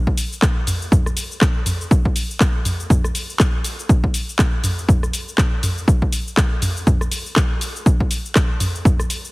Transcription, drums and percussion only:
0.07 kick
0.17 open hi-hat, shaker
0.33 shaker
0.42 kick, cross-stick, clap, shaker
0.67 mid tom, open hi-hat, shaker
0.82 shaker
0.92 kick, mid tom, shaker
1.06 cross-stick, shaker
1.17 open hi-hat, shaker
1.32 shaker
1.41 kick, cross-stick, clap, shaker
1.66 mid tom, open hi-hat, shaker
1.81 shaker
1.91 kick, shaker
2.05 kick
2.16 open hi-hat, shaker
2.31 shaker
2.41 kick, cross-stick, clap, shaker
2.65 mid tom, open hi-hat, shaker
2.80 shaker
2.90 kick, mid tom, shaker
3.04 cross-stick, shaker
3.15 open hi-hat, shaker
3.30 shaker
3.40 kick, cross-stick, clap, shaker
3.64 open hi-hat, shaker
3.79 shaker
3.89 kick, shaker
4.04 kick
4.14 open hi-hat, shaker
4.29 shaker
4.39 kick, cross-stick, clap, shaker
4.64 mid tom, open hi-hat, shaker
4.79 shaker
4.89 kick, mid tom, shaker
5.03 cross-stick, shaker
5.13 open hi-hat, shaker
5.28 shaker
5.38 kick, cross-stick, clap, shaker
5.63 mid tom, open hi-hat, shaker
5.78 shaker
5.88 kick, shaker
6.02 kick
6.12 open hi-hat, shaker
6.28 shaker
6.37 kick, cross-stick, clap, shaker
6.62 mid tom, open hi-hat, shaker
6.77 shaker
6.87 kick, mid tom, shaker
7.01 cross-stick, shaker
7.12 open hi-hat, shaker
7.26 shaker
7.36 kick, cross-stick, clap, shaker
7.61 open hi-hat, shaker
7.76 shaker
7.86 kick, shaker
8.00 kick
8.11 open hi-hat, shaker
8.26 shaker
8.36 kick, cross-stick, clap, shaker
8.60 mid tom, open hi-hat, shaker
8.75 shaker
8.85 kick, mid tom, shaker
8.99 cross-stick, shaker
9.10 open hi-hat, shaker
9.25 shaker

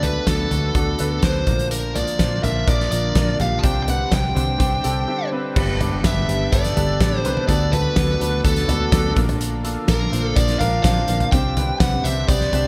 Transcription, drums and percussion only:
0.03 closed hi-hat, floor tom
0.27 kick, snare, closed hi-hat
0.51 closed hi-hat, floor tom
0.75 kick, closed hi-hat
0.99 closed hi-hat
1.22 kick, snare, closed hi-hat
1.47 kick, closed hi-hat, floor tom
1.59 closed hi-hat
1.71 closed hi-hat
1.96 closed hi-hat, floor tom
2.07 closed hi-hat
2.19 kick, snare, closed hi-hat
2.44 closed hi-hat, floor tom
2.68 kick, closed hi-hat
2.80 snare
2.92 closed hi-hat
3.15 kick, snare, closed hi-hat
3.40 closed hi-hat, floor tom
3.63 kick, closed hi-hat
3.88 closed hi-hat, floor tom
4.12 kick, snare, closed hi-hat
4.36 closed hi-hat, floor tom
4.60 kick, closed hi-hat
4.84 closed hi-hat
5.56 kick, crash
5.81 closed hi-hat, floor tom
6.04 kick, snare, closed hi-hat
6.29 closed hi-hat
6.53 kick, closed hi-hat
6.64 snare, closed hi-hat
6.77 closed hi-hat, floor tom
7.00 kick, snare, closed hi-hat
7.25 closed hi-hat
7.37 floor tom
7.49 kick, closed hi-hat
7.73 closed hi-hat, floor tom
7.96 kick, snare, closed hi-hat
8.21 closed hi-hat
8.45 kick, closed hi-hat
8.56 snare, closed hi-hat
8.69 closed hi-hat, floor tom
8.92 kick, snare, closed hi-hat
9.16 kick, closed hi-hat
9.29 closed hi-hat, floor tom
9.41 closed hi-hat
9.65 closed hi-hat
9.88 kick, snare, closed hi-hat
10.13 closed hi-hat
10.36 kick, closed hi-hat
10.48 snare, closed hi-hat
10.61 closed hi-hat, floor tom
10.84 kick, snare, closed hi-hat
11.08 closed hi-hat
11.20 closed hi-hat, floor tom
11.32 kick, closed hi-hat
11.57 closed hi-hat, floor tom
11.80 kick, snare, closed hi-hat
12.05 closed hi-hat
12.29 kick, closed hi-hat
12.41 snare
12.53 closed hi-hat, floor tom

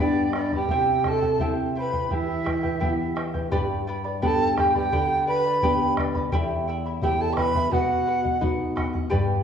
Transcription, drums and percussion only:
0.33 bombo rim
0.52 bombo low
0.68 bombo low
1.04 bombo rim, bombo low
1.22 bombo low
1.39 bombo low
1.93 bombo low
2.11 bombo low
2.46 bombo rim, bombo low
2.64 bombo low
2.82 bombo low
3.17 bombo rim
3.34 bombo low
3.52 bombo low
4.22 bombo low
4.57 bombo rim, bombo low
4.75 bombo low
4.92 bombo low
5.62 bombo low
5.97 bombo rim, bombo low
6.15 bombo low
6.32 bombo low
7.02 bombo low
7.37 bombo rim, bombo low
7.55 bombo low
7.72 bombo low
8.25 bombo low
8.42 bombo low
8.77 bombo rim, bombo low
8.94 bombo low
9.12 bombo low

